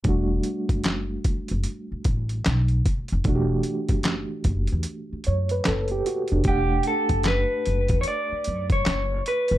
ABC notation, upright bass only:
X:1
M:4/4
L:1/16
Q:"Swing 16ths" 1/4=75
K:Edor
V:1 name="Upright bass" clef=bass
E,,,2 z F,,,3 z F,,, z2 A,,,2 B,,,2 z =F,,, | E,,,2 z F,,,2 z F,,, E,, z2 F,,2 F,,,2 z =F,,, | E,,,2 z F,,,2 z F,,, E,, z2 F,,2 F,,,2 z =F,,, |]